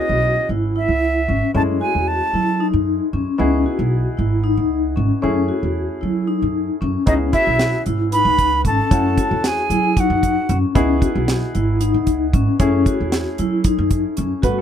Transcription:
Already playing: grand piano B3 C#4 E4 G#4, vibraphone F#4, flute D#5
0.09 upright bass B1
0.49 upright bass G#1, vibraphone E4
0.76 vibraphone E4, flute E5
0.88 upright bass C#2
1.28 upright bass G#1, vibraphone C#4
1.54 upright bass F#2, grand piano G#3 A3 C#4 E4, vibraphone C#4, flute A5
1.81 vibraphone F#4, flute G#5
1.95 upright bass E2
2.08 flute A5
2.33 upright bass F#3, vibraphone E4
2.60 vibraphone D#4
2.73 upright bass F#2
3.13 upright bass F#2, vibraphone C#4
3.38 upright bass C#2, grand piano B3 D#4 E4 G#4, vibraphone C#4
3.66 vibraphone F#4
3.79 upright bass B1
4.17 upright bass G#1, vibraphone E4
4.44 vibraphone D#4
4.57 upright bass C#2
4.96 upright bass G#1, vibraphone C#4
5.22 upright bass F#2, grand piano A3 C#4 E4 G#4, vibraphone C#4
5.48 vibraphone F#4
5.63 upright bass E2
6.01 upright bass F#3, vibraphone E4
6.28 vibraphone D#4
6.42 upright bass F#2
6.81 upright bass F#2, vibraphone C#4
7.06 upright bass C#2, grand piano B3 C#4 E4 G#4, vibraphone C#4, flugelhorn D#4, flute D#5, kick, closed hi-hat
7.33 flugelhorn E4, vibraphone F#4, flute E5, kick, closed hi-hat
7.47 upright bass B1
7.59 snare, closed hi-hat
7.86 upright bass G#1, vibraphone E4, closed hi-hat
8.12 vibraphone D#4, flugelhorn B4, flute B5, closed hi-hat
8.25 upright bass C#2
8.39 kick, closed hi-hat
8.65 upright bass G#1, vibraphone C#4, flugelhorn A4, flute A5, kick, closed hi-hat
8.91 upright bass F#2, grand piano A3 C#4 E4 F#4, vibraphone C#4, kick, closed hi-hat
9.18 vibraphone F#4, kick, closed hi-hat
9.31 upright bass E2
9.44 flugelhorn G#4, flute G#5, snare, closed hi-hat
9.70 upright bass F#3, vibraphone E4, closed hi-hat
9.97 vibraphone D#4, flugelhorn F#4, flute F#5, kick, closed hi-hat
10.10 upright bass F#2
10.23 kick, closed hi-hat
10.49 upright bass F#2, vibraphone C#4, closed hi-hat
10.75 upright bass C#2, grand piano B3 D#4 E4 G#4, vibraphone C#4, kick, closed hi-hat
11.01 vibraphone F#4, kick, closed hi-hat
11.15 upright bass B1
11.28 snare, closed hi-hat
11.55 upright bass G#1, vibraphone E4, closed hi-hat
11.81 vibraphone D#4, closed hi-hat
11.94 upright bass C#2
12.07 kick, closed hi-hat
12.33 upright bass G#1, vibraphone C#4, kick, closed hi-hat
12.59 upright bass F#2, grand piano A3 C#4 E4 G#4, vibraphone C#4, kick, closed hi-hat
12.86 vibraphone F#4, kick, closed hi-hat
13.00 upright bass E2
13.12 snare, closed hi-hat
13.38 upright bass F#3, vibraphone E4, closed hi-hat
13.64 vibraphone D#4, kick, closed hi-hat
13.78 upright bass F#2
13.91 kick, closed hi-hat
14.17 upright bass F#2, vibraphone C#4, closed hi-hat
14.42 upright bass G2, grand piano A3 B3 F#4 B4, vibraphone F#4, kick, closed hi-hat
14.58 grand piano A4

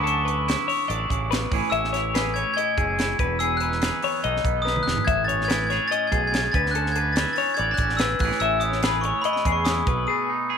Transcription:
Already playing: fingered electric bass D2, clean electric guitar D3 F#3 D4 E4
0.03 clean electric guitar C#4 A4, closed hi-hat
0.08 glockenspiel C#6
0.25 clean electric guitar D4 B4, closed hi-hat
0.48 clean electric guitar E4, snare, closed hi-hat
0.68 clean electric guitar C#5, open hi-hat
0.88 fingered electric bass A1, clean electric guitar D4 D5, closed hi-hat
1.09 fingered electric bass A1, clean electric guitar C#3, kick, closed hi-hat
1.31 clean electric guitar B2 B4, snare, closed hi-hat
1.51 fingered electric bass A1, clean electric guitar A2 E3 C#4 E4 G#4, kick, open hi-hat
1.70 fingered electric bass A1, clean electric guitar C#4 E5, glockenspiel E6, closed hi-hat
1.84 snare
1.93 clean electric guitar E4 C#5, snare, closed hi-hat
2.14 clean electric guitar G#4 B4, snare, closed hi-hat
2.34 clean electric guitar C#4 C#5, glockenspiel G#6, closed hi-hat
2.54 clean electric guitar E4 D#5, glockenspiel G#6
2.58 closed hi-hat
2.78 fingered electric bass F#1, clean electric guitar C#4 G#4, kick, closed hi-hat
2.99 clean electric guitar E4, snare, closed hi-hat
3.19 fingered electric bass E1, clean electric guitar E2 B4, kick, closed hi-hat
3.39 clean electric guitar B3 G#4, glockenspiel E6, closed hi-hat
3.57 clean electric guitar B4, glockenspiel F#6, closed hi-hat
3.62 clean electric guitar D#4
3.72 snare
3.82 clean electric guitar G#4, snare, closed hi-hat
4.02 clean electric guitar B3 C#5, open hi-hat
4.24 fingered electric bass B1, clean electric guitar D#4 D#5, closed hi-hat
4.36 snare
4.44 fingered electric bass B1, clean electric guitar B3, kick, closed hi-hat
4.62 clean electric guitar D#4 B4, glockenspiel D#6
4.67 snare
4.76 mid tom
4.83 clean electric guitar E2, glockenspiel F#6
4.87 fingered electric bass E1, snare
4.98 floor tom
5.05 fingered electric bass A1, clean electric guitar A2 E5, glockenspiel G#6, kick, closed hi-hat
5.24 clean electric guitar C#4 C#5, glockenspiel A6
5.29 closed hi-hat
5.41 glockenspiel G#6, snare
5.48 clean electric guitar E4 B4, snare, closed hi-hat
5.67 clean electric guitar C#5, glockenspiel G#6, closed hi-hat
5.71 clean electric guitar G#4, snare
5.88 clean electric guitar D#5, glockenspiel A6
5.92 clean electric guitar C#4, closed hi-hat
6.07 glockenspiel G#6
6.12 fingered electric bass B1, clean electric guitar B2 G#4, kick, closed hi-hat
6.27 glockenspiel G#6
6.33 clean electric guitar C#3, snare, closed hi-hat
6.52 fingered electric bass D2, clean electric guitar D3 B4, glockenspiel A6, kick, closed hi-hat
6.66 snare
6.71 clean electric guitar C#4, glockenspiel F#6, closed hi-hat
6.76 clean electric guitar A4
6.86 snare
6.92 clean electric guitar D4, glockenspiel G#6, closed hi-hat
6.96 clean electric guitar B4
7.12 glockenspiel A6, closed hi-hat
7.17 clean electric guitar E4, snare
7.33 glockenspiel A6, open hi-hat
7.38 clean electric guitar C#4 C#5
7.54 clean electric guitar D5, glockenspiel G#6, closed hi-hat
7.59 fingered electric bass A1, clean electric guitar B3
7.71 clean electric guitar D4, glockenspiel F#6
7.77 fingered electric bass A1, clean electric guitar C#4, kick, closed hi-hat
7.89 snare
7.97 clean electric guitar B4, glockenspiel E6, snare, closed hi-hat
8.02 clean electric guitar D4
8.19 fingered electric bass A1, clean electric guitar A2, glockenspiel F#6, kick, open hi-hat
8.23 clean electric guitar E3 C#4 E4 G#4
8.31 snare
8.40 fingered electric bass A1, clean electric guitar C#4 E5, glockenspiel E6, closed hi-hat
8.60 clean electric guitar E4 C#5, glockenspiel D#6, closed hi-hat
8.72 snare
8.83 clean electric guitar G#4 B4, snare, closed hi-hat
9.01 clean electric guitar C#4 C#5, glockenspiel C#6, closed hi-hat
9.22 clean electric guitar E4 D#5, glockenspiel B5, closed hi-hat
9.33 glockenspiel B5, snare
9.45 fingered electric bass E2, clean electric guitar C#4 G#4, kick, closed hi-hat
9.52 glockenspiel C#6
9.65 clean electric guitar E4, glockenspiel D#6, snare, closed hi-hat
9.87 fingered electric bass B1, clean electric guitar B2 B4, kick, closed hi-hat
10.07 clean electric guitar A3 G#4, glockenspiel D#6
10.30 clean electric guitar D#4
10.50 clean electric guitar G#4

